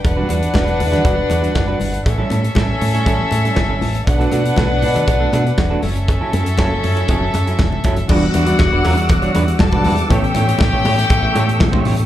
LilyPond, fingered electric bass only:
\new Staff \with { instrumentName = "Fingered electric bass" } { \clef bass \time 4/4 \key e \dorian \tempo 4 = 119 e,,8 e,8 e,,8 e,8 e,,8 e,8 fis,,8 g,,8 | a,,8 a,8 a,,8 a,8 a,,8 a,8 g,,8 a,,8 | b,,8 b,8 b,,8 b,8 b,,8 b,8 e,,8 fis,,8~ | fis,,8 fis,8 fis,,8 fis,8 fis,,8 fis,8 e,,8 fis,,8 |
e,,8 e,8 e,,16 e,,16 e,8 e,,8 e,8 e,,8 e,8 | a,,8 a,8 a,,16 a,,16 a,8 a,,8 a,8 a,,8 a,8 | }